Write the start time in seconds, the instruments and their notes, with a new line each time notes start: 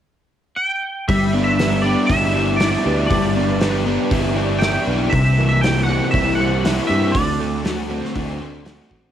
0.56 clean electric guitar G5
1.08 fingered electric bass G1, twelve-string acoustic guitar E3, distorted electric guitar G3, overdriven electric guitar G3, clean electric guitar E5, kick, open hi-hat
1.33 twelve-string acoustic guitar B3, distorted electric guitar B3, overdriven electric guitar D4
1.44 clean electric guitar E5
1.59 overdriven electric guitar G3, twelve-string acoustic guitar D4, distorted electric guitar B4, snare, open hi-hat
1.82 distorted electric guitar B3, overdriven electric guitar D4, twelve-string acoustic guitar G4, clean electric guitar D5
2.07 fingered electric bass G1, twelve-string acoustic guitar D4, overdriven electric guitar E4, clean electric guitar E5, kick, open hi-hat
2.11 distorted electric guitar E4
2.35 twelve-string acoustic guitar E3, overdriven electric guitar G3, distorted electric guitar D5
2.56 twelve-string acoustic guitar B3, overdriven electric guitar E4, distorted electric guitar E4, clean electric guitar D5, open hi-hat
2.61 snare
2.74 snare
2.85 fingered electric bass D2, overdriven electric guitar D4, twelve-string acoustic guitar G4, distorted electric guitar B4
3.06 twelve-string acoustic guitar E3, clean electric guitar D5, open hi-hat
3.10 fingered electric bass G1, overdriven electric guitar G3, distorted electric guitar G3, kick
3.36 twelve-string acoustic guitar B3, distorted electric guitar B3, overdriven electric guitar D4
3.60 overdriven electric guitar G3, twelve-string acoustic guitar D4, distorted electric guitar B4, snare, open hi-hat
3.86 distorted electric guitar B3, overdriven electric guitar D4, twelve-string acoustic guitar G4
4.11 fingered electric bass G1, twelve-string acoustic guitar D4, distorted electric guitar E4, overdriven electric guitar E4, kick, open hi-hat
4.36 twelve-string acoustic guitar E3, overdriven electric guitar G3, distorted electric guitar D5
4.59 twelve-string acoustic guitar B3, distorted electric guitar E4, clean electric guitar G5, snare, open hi-hat
4.63 overdriven electric guitar E4
4.87 fingered electric bass B1, overdriven electric guitar D4, twelve-string acoustic guitar G4, distorted electric guitar B4
5.10 fingered electric bass C2, overdriven electric guitar C3, distorted electric guitar C3, twelve-string acoustic guitar E3, clean electric guitar E5, kick, open hi-hat
5.38 overdriven electric guitar E3, distorted electric guitar A#3, twelve-string acoustic guitar A#3
5.49 clean electric guitar E5
5.61 overdriven electric guitar G3, twelve-string acoustic guitar C4, distorted electric guitar G4, clean electric guitar G5, snare, open hi-hat
5.83 clean electric guitar F#5
5.88 distorted electric guitar A#3, overdriven electric guitar C4, twelve-string acoustic guitar G4
6.11 fingered electric bass C2, twelve-string acoustic guitar C4, overdriven electric guitar E4, distorted electric guitar E4, clean electric guitar E5, kick, open hi-hat
6.35 distorted electric guitar C5, clean electric guitar F#5
6.39 twelve-string acoustic guitar E3, overdriven electric guitar G3
6.64 twelve-string acoustic guitar A#3, distorted electric guitar E4, overdriven electric guitar E4, snare, open hi-hat
6.87 fingered electric bass G2, overdriven electric guitar C4, distorted electric guitar G4, twelve-string acoustic guitar G4, clean electric guitar E5
7.12 fingered electric bass D2, distorted electric guitar D3, overdriven electric guitar D3, twelve-string acoustic guitar A3, clean electric guitar D5, kick, open hi-hat
7.39 twelve-string acoustic guitar A3, distorted electric guitar A3, overdriven electric guitar A3
7.65 overdriven electric guitar A3, twelve-string acoustic guitar C4, distorted electric guitar F#4, snare, open hi-hat
7.90 distorted electric guitar A3, overdriven electric guitar C4, twelve-string acoustic guitar F#4
8.05 snare
8.14 fingered electric bass D2, twelve-string acoustic guitar C4, distorted electric guitar D4, overdriven electric guitar F#4, kick, open hi-hat
8.39 twelve-string acoustic guitar A3, overdriven electric guitar A3, distorted electric guitar C5
8.65 twelve-string acoustic guitar A3, distorted electric guitar D4, overdriven electric guitar F#4, snare, open hi-hat
8.79 snare
8.89 fingered electric bass A1, overdriven electric guitar C4, twelve-string acoustic guitar F#4, distorted electric guitar F#4, kick